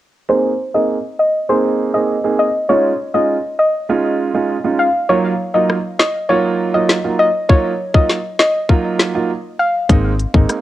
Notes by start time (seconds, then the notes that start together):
0.29 A#3 C4 D#4 G#4 C5
0.74 A#3 C4 D#4 G#4 D#5
1.19 D#5
1.49 A#3 C4 D#4 G#4 C5
1.94 A#3 C4 D#4 G#4 D#5
2.24 A#3 C4 D#4 G#4
2.39 D#5
2.69 G#3 C#4 D#4 F4 C#5
3.14 G#3 C#4 D#4 F4 D#5
3.59 D#5
3.89 G#3 C#4 D#4 F4
4.34 G#3 C#4 D#4 F4
4.64 G#3 C#4 D#4 F4
4.79 F5
5.09 F#3 A#3 D#4 F4 C#5
5.54 F#3 A#3 D#4 F4 D#5
5.70 cross-stick
5.99 D#5, snare
6.29 F#3 A#3 D#4 F4 C#5
6.74 F#3 A#3 D#4 F4 D#5
6.89 snare
7.04 F#3 A#3 D#4 F4
7.19 D#5
7.49 F#3 A#3 D#4 F4 C#5, kick
7.94 F#3 A#3 D#4 F4 D#5, kick
8.09 snare
8.39 D#5, snare
8.69 F#3 A#3 D#4 F4, kick
8.99 snare
9.14 F#3 A#3 D#4 F4
9.59 F5
9.89 G#1 G#3 A#3 C4 D#4, kick, closed hi-hat
10.19 closed hi-hat
10.34 G#1 G#3 A#3 C4 D#4, kick
10.49 cross-stick, closed hi-hat